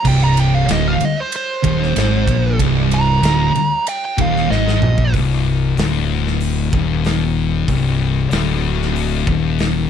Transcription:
0.05 C1 C2 G5, kick, crash
0.24 A#5
0.37 G5, ride
0.55 F5
0.68 D1 D2 D#5, snare, ride
0.88 F5
0.99 muted distorted electric guitar stroke, muted fingered electric bass stroke, ride
1.05 D#5
1.20 C5
1.32 C5, ride
1.64 D#1 D#2, kick, ride
1.83 snare
1.96 G#1 G#2, snare, ride
2.27 A#1 A#2, kick, ride
2.59 C1 C2, kick, ride
2.91 A#5, ride
3.22 D1 D2, snare, ride
3.54 muted fingered electric bass stroke, muted distorted electric guitar stroke, ride
3.87 G5, ride
4.05 G5
4.18 D#1 D#2 F5, kick, ride
4.36 snare
4.50 G#1 G#2 D#5, snare
4.68 snare
4.82 A#1 A#2, mid tom
4.98 kick
5.14 C1 C2, kick, open hi-hat
5.77 D1 D2, snare, open hi-hat
6.27 snare
6.41 open hi-hat
6.73 D#1 D#2, kick
7.04 snare, open hi-hat
7.68 C1 C2, kick, open hi-hat
8.31 D1 D2, snare, open hi-hat
8.81 snare
8.96 open hi-hat
9.27 D#1 D#2, kick
9.59 snare, open hi-hat

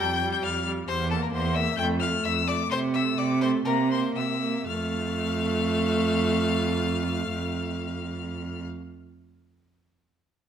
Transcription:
Already playing: G3
0.00 F2 G5 G6
0.21 G3
0.32 G5 G6
0.43 F2 F5 F6
0.65 G3
0.87 E2 C5 C6
1.09 A#3 A4 A5
1.22 A#4 A#5
1.31 E2 C5 C6
1.54 A#3 E5 E6
1.77 F2 A3 G5 G6
2.00 A3 F5 F6
2.23 F2 E5 E6
2.47 A3 D5 D6
2.70 C3 C5 C6
2.94 A3 E5 E6
3.17 C3 D5 D6
3.41 A3 C5 C6
3.65 C3 A#3 A#4 A#5
3.90 A#3 C5 C6
4.15 C3 E5 E6
4.41 A#3
4.67 F2 A3 F5 F6

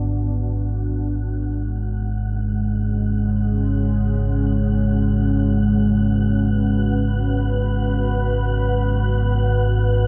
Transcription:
Already playing: B3
0.02 G#1 G#2 G#3 F#4 F#5
0.72 C#4
2.30 F#4
3.74 B4
8.16 B3
9.73 D4

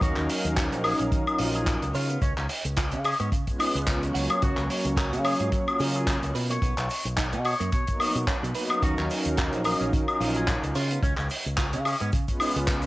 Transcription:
Already playing: F#3 C#4 D#4 A#4 F5
0.01 D#2 D#4 F#4, kick, closed hi-hat, shaker
0.16 D#2, clap, shaker
0.30 open hi-hat, shaker
0.45 D#2, closed hi-hat, shaker
0.57 F#4, kick, clap, closed hi-hat, shaker
0.72 A#1 D#4, closed hi-hat, shaker
0.84 G#4 A#4, open hi-hat, high woodblock, shaker
0.99 A#1 C#4, closed hi-hat, shaker
1.12 D#3, kick, closed hi-hat, shaker
1.27 F#3 C#4 D#4 F4 A#4, high woodblock, shaker
1.38 A#1 F4, open hi-hat, shaker
1.54 F#3 C#4 D#4 F4 G#4 A#4, closed hi-hat, shaker
1.67 kick, clap, closed hi-hat, shaker
1.82 C#2, closed hi-hat, shaker
1.95 C#3 F4 C#5, open hi-hat, shaker
2.09 B3, closed hi-hat, shaker
2.22 C#2 C#4, kick, closed hi-hat, shaker
2.37 C#2 C#4, clap, shaker
2.49 open hi-hat, shaker
2.64 C#2, closed hi-hat, shaker
2.77 F4, kick, clap, closed hi-hat, shaker
2.91 C#3 C#4, closed hi-hat, shaker
3.04 C#4 G#4, open hi-hat, high woodblock, shaker
3.20 G#2 B3 C#4, closed hi-hat, shaker
3.32 C#3, kick, closed hi-hat, shaker
3.47 G#3 B3 C#4 F4 B4, kick, closed hi-hat, shaker
3.59 D#4, open hi-hat, high woodblock, shaker
3.75 C#2 G#3 B3 C#4 F4 B4, closed hi-hat, shaker
3.87 kick, clap, closed hi-hat, shaker
4.02 F#3 A#3 C#4 C#5, closed hi-hat, shaker
4.14 C#2 F#5, open hi-hat, shaker
4.30 F4, closed hi-hat, high woodblock, shaker
4.42 C#2 F#4, kick, closed hi-hat, shaker
4.57 C#2, clap, shaker
4.70 open hi-hat, shaker
4.85 C#2, closed hi-hat, shaker
4.97 A#4, kick, clap, closed hi-hat, shaker
5.13 C#3 F#4, closed hi-hat, shaker
5.25 G#4 C#5, open hi-hat, high woodblock, shaker
5.40 G#2 F4, closed hi-hat, shaker
5.52 F#3, kick, closed hi-hat, shaker
5.67 F#3 A#3 C#4 F4 A#4, high woodblock, shaker
5.80 C#3 G#4, open hi-hat, shaker
5.95 F#3 A#3 C#4 F4 G#4 A#4, closed hi-hat, shaker
6.07 kick, clap, closed hi-hat, shaker
6.23 C#2, closed hi-hat, shaker
6.35 B2 B4, open hi-hat, shaker
6.50 A#3 C#5, closed hi-hat, shaker
6.62 B1 B3, kick, closed hi-hat, shaker
6.78 B1, clap, closed hi-hat, shaker
6.90 open hi-hat, shaker
7.05 B1, closed hi-hat, shaker
7.17 D#4, kick, clap, closed hi-hat, shaker
7.33 B2 B3, closed hi-hat, shaker
7.45 F#4 C#5, open hi-hat, high woodblock, shaker
7.60 F#2 A#3, closed hi-hat, shaker
7.72 B2 C#5, kick, closed hi-hat, shaker
7.87 F#3 A#3 B3 D#4 A#4, kick, closed hi-hat, shaker
8.00 A#3, open hi-hat, high woodblock, shaker
8.15 B2, closed hi-hat, shaker
8.27 C#4, kick, clap, closed hi-hat, shaker
8.43 B2 F#3, closed hi-hat, shaker
8.55 F#3 A#3 B3 D#4 B4, open hi-hat, shaker
8.70 F#3 B3 C#4 D#4 A#4 F5, closed hi-hat, high woodblock, shaker
8.82 D#2 D#4 F#4, kick, closed hi-hat, shaker
8.98 D#2, clap, shaker
9.10 open hi-hat, shaker
9.25 D#2, closed hi-hat, shaker
9.37 F#4, kick, clap, closed hi-hat, shaker
9.53 A#1 D#4, closed hi-hat, shaker
9.64 G#4 A#4, open hi-hat, high woodblock, shaker
9.80 A#1 C#4, closed hi-hat, shaker
9.93 D#3, kick, closed hi-hat, shaker
10.08 F#3 C#4 D#4 F4 A#4, high woodblock, shaker
10.20 A#1 F4, open hi-hat, shaker
10.35 F#3 C#4 D#4 F4 G#4 A#4, closed hi-hat, shaker
10.47 kick, clap, closed hi-hat, shaker
10.63 C#2, closed hi-hat, shaker
10.75 C#3 F4 C#5, open hi-hat, shaker
10.91 B3, closed hi-hat, shaker
11.03 C#2 C#4, kick, closed hi-hat, shaker
11.17 C#2 C#4, clap, shaker
11.30 open hi-hat, shaker
11.45 C#2, closed hi-hat, shaker
11.58 F4, kick, clap, closed hi-hat, shaker
11.73 C#3 C#4, closed hi-hat, shaker
11.85 C#4 G#4, open hi-hat, high woodblock, shaker
12.00 G#2 B3 C#4, closed hi-hat, shaker
12.12 C#3, kick, closed hi-hat, shaker
12.28 G#3 B3 C#4 F4 B4, kick, closed hi-hat, shaker
12.40 D#4, open hi-hat, high woodblock, shaker
12.55 C#2 G#3 B3 C#4 F4 B4, closed hi-hat, shaker
12.68 kick, clap, closed hi-hat, shaker
12.82 F#3 A#3, closed hi-hat, shaker

